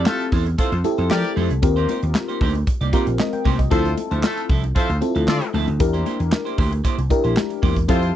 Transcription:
Already playing: C4 E4 G4 A4
0.06 A3 F4 A4, muted clean electric guitar stroke, snare, clap, high conga
0.20 muted clean electric guitar stroke, closed hi-hat
0.32 E2 C4 E4 A4 C5, kick, open hi-hat
0.46 muted clean electric guitar stroke, closed hi-hat
0.58 C4 E4 F4 A4 C5, kick, closed hi-hat, muted conga
0.72 F2, muted clean electric guitar stroke, closed hi-hat
0.84 C4 E4 G4 A4, muted clean electric guitar stroke, closed hi-hat, muted conga
0.98 F2 C4 E4 A4 C5, closed hi-hat
1.10 F3 G4 A#4 D5, snare, clap, high conga
1.24 muted clean electric guitar stroke, closed hi-hat
1.36 F2 C4 E4 A4 C5, open hi-hat, high conga
1.50 C2, muted clean electric guitar stroke, closed hi-hat
1.62 D#2 C4 F4 G4 A#4, muted clean electric guitar stroke, kick, closed hi-hat, muted conga
1.76 A#3 D#4 G4 C5, closed hi-hat
1.89 A#3 D#4 G4 C5, closed hi-hat, muted conga
2.02 D#2, muted clean electric guitar stroke, closed hi-hat
2.15 muted clean electric guitar stroke, snare, clap, high conga
2.28 A#3 D#4 G4 C5, closed hi-hat
2.41 D2 A#3 D#4 G4 C5, kick, open hi-hat
2.55 muted clean electric guitar stroke, closed hi-hat
2.67 muted clean electric guitar stroke, kick, closed hi-hat, muted conga
2.81 C2 A#3 D#4 G4 D5, closed hi-hat
2.93 A#3 C4 D#4 F4 G4 A#4 C5, kick, closed hi-hat, muted conga
3.07 A#1, muted clean electric guitar stroke, closed hi-hat
3.19 D#5, snare, clap, high conga
3.33 G5, muted clean electric guitar stroke, closed hi-hat, high conga
3.45 C2 A#3 D#4 G4 C5, kick, open hi-hat, high conga
3.59 D#5, muted clean electric guitar stroke, kick, closed hi-hat
3.71 D2 F3 C4 E4 F4 A4 C5, kick, closed hi-hat, muted conga
3.85 muted clean electric guitar stroke, closed hi-hat
3.97 muted clean electric guitar stroke, closed hi-hat, muted conga
4.11 D2 F3 A3 C4 E4 F4 A4 C5, closed hi-hat
4.23 A3 F4 A4, snare, clap, high conga
4.37 muted clean electric guitar stroke, closed hi-hat
4.49 C2 F3 C4 E4 A4, kick, open hi-hat
4.64 muted clean electric guitar stroke, closed hi-hat
4.75 F3 C4 E4 F4 A4 C5, kick, closed hi-hat
4.90 D2, muted clean electric guitar stroke, closed hi-hat
5.01 C4 E4 F4 A4, muted clean electric guitar stroke, closed hi-hat, muted conga
5.15 D2 F3 C4 E4 A4, closed hi-hat
5.28 D3 F4 A4 D5, snare, clap, high conga
5.41 muted clean electric guitar stroke, closed hi-hat
5.53 D2 F3 C4 E4 A4, open hi-hat, high conga
5.67 D2, muted clean electric guitar stroke, closed hi-hat
5.80 E2 D4 E4 G4 A#4, muted clean electric guitar stroke, kick, closed hi-hat, muted conga
5.93 A#3 E4 G4 C5, closed hi-hat
6.05 A#3 E4 G4 C5, closed hi-hat, muted conga
6.19 E2, muted clean electric guitar stroke, closed hi-hat
6.32 muted clean electric guitar stroke, snare, clap, high conga
6.45 A#3 E4 G4 C5, closed hi-hat
6.58 D2 A#3 E4 G4 C5, kick, open hi-hat
6.72 muted clean electric guitar stroke, closed hi-hat
6.84 A#3 E4 G4 C5, kick, closed hi-hat
6.98 C2, muted clean electric guitar stroke, closed hi-hat
7.10 D4 E4 G4 A#4, muted clean electric guitar stroke, kick, closed hi-hat, muted conga
7.24 A#1 A#3 E4 G4 C5, closed hi-hat
7.36 muted clean electric guitar stroke, snare, clap, high conga
7.50 muted clean electric guitar stroke, closed hi-hat
7.62 E2 A#3 E4 G4 C5, kick, open hi-hat, high conga
7.76 muted clean electric guitar stroke, kick, closed hi-hat
7.88 F2 C4 E4 F4 G4 A4 C5, kick, closed hi-hat, muted conga
8.02 muted clean electric guitar stroke, closed hi-hat

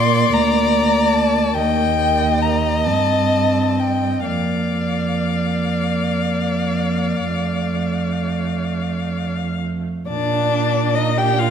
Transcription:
Already playing: A#2 A#3 D5 C6
0.33 D2 A#5
1.13 A5
1.54 D#2 A#3 D#5 G5
2.42 A#5
2.87 G2 C4 A5
3.79 G5
4.26 F2 A#3 D5 F5
7.26 F2 A3
10.08 A#2 D4 D5
10.95 D#4 D#5
11.17 G4 G5
11.38 F4 F5

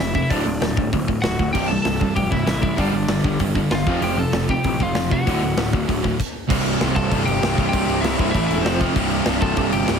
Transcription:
Already playing: E4 E5
0.00 F1 F2 C3
0.15 F2 C3 E4 E5, kick
0.30 D1 D2 A2 D3 D4 D5, kick, open hi-hat
0.46 D1 D2 A2
0.61 D1 D2 A2, snare, open hi-hat
0.77 D1 D2 A2, kick
0.93 D1 D2 A2, kick, open hi-hat
1.08 D2 A2, kick
1.22 D1 D2 A2 F#4 F#5, snare, open hi-hat
1.39 D1 D2 A2, kick
1.53 C1 C2 G2 C3 G4 G5, kick, crash
1.68 C2 C3 A4 A5
1.72 G2
1.82 C1 C2 G2 C3 A4 A5, snare, open hi-hat
2.00 C2 G2 C3, kick
2.16 F1 C2 G2 C3 G4 G5, kick, open hi-hat
2.30 C1 C2 G2 C3 E4 E5, kick
2.46 A1 C2 G2 C3, snare, open hi-hat
2.62 C2 G2 C3 E4 E5, kick
2.76 G1 G2 D3 G3 D4 D5, kick, open hi-hat
2.92 G1 G2 D3 G3
3.08 G1 G2 D3 G3, snare, open hi-hat
3.23 G1 G2 D3 G3, kick
3.40 G1 G2 D3 G3, kick, open hi-hat
3.54 G2 D3 G3, kick
3.71 G1 G2 D3 G3 F4, snare, open hi-hat
3.75 F5
3.87 F1 F2 C3 F3, kick
4.01 F1 F2 C3 F3 G4 G5, open hi-hat
4.17 F2 C3 F3 A4 A5
4.31 F1 F2 C3 F3, snare, open hi-hat
4.49 F2 C3 F3 G4 G5, kick
4.63 A1 F2 C3 F3, kick, open hi-hat
4.79 F1 F2 C3 F3 F4 F5, kick
4.94 F1 F2 C3 F3, snare, open hi-hat
5.11 F2 C3 F3 F#4 F#5, kick
5.27 D1 D2 A2 D3, kick, open hi-hat
5.42 D1 D2 A2 D3
5.57 D1 D2 A2 D3, snare, open hi-hat
5.72 D1 D2 A2 D3, kick
5.84 D1 D3 E5
5.89 D2 A2, kick, open hi-hat
6.02 D2 A2 D3, kick
6.20 kick, crash
6.50 C1 C2 G2 C3, kick, crash
6.66 crash
6.81 C1 C2 G2 C3, snare, crash
6.96 C1 C2 G2 C3 A4 A5, kick, crash
7.12 C1 C2 G2 C3, kick, crash
7.26 G1 G4 G5, crash
7.42 C1 C2 G2 C3, snare, crash
7.55 C1 C2 C3, kick
7.59 C2 G2 C3, crash
7.69 C2 G5
7.73 C1 G2 C3 G4, kick, crash
7.87 C1, crash
8.01 C2 E4 E5, snare, crash
8.06 G2 C3
8.19 C1 C2 G2 C3, kick, crash
8.31 A1 A2 E3 E5, kick
8.35 A3 E4, crash
8.47 E1 E4 E5
8.51 crash
8.62 F1 F2 C3 F3 C4 C5, snare, crash
8.80 F2 C3 F3, kick, crash
8.96 C1 C2 G2 C3, kick, crash
9.11 crash
9.26 C1 C2 G2 C3, snare, crash
9.42 C1 C2 G2 C3 A4 A5, kick, crash
9.57 C1 C2 G2 C3, kick, crash
9.71 G1 G4 G5, crash
9.88 C1 C2 G2 C3, snare, crash

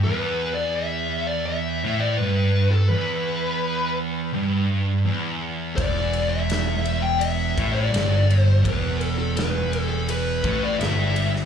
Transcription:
0.04 E2 B4
0.54 D5
0.75 E5
1.27 D5
1.46 E5
1.84 A2
2.00 D5
2.17 G2 B4
2.71 A4
2.88 E2 B4
4.34 G2
5.05 E2
5.76 E1 E2 D5, kick, ride
6.13 ride
6.29 E5
6.50 snare, ride
6.85 ride
7.02 G5
7.19 E5, ride
7.57 A1 A2, kick, ride
7.73 D5
7.91 G1 G2, ride
7.96 snare
8.30 ride
8.40 C5
8.63 E1 E2 B4, kick, ride
9.01 ride
9.19 A4
9.36 B4, snare, ride
9.73 ride
9.89 A4
10.09 B4, ride
10.44 A1 A2, kick, ride
10.64 D5
10.79 G1 G2 E5, snare, ride
11.16 ride
11.36 snare

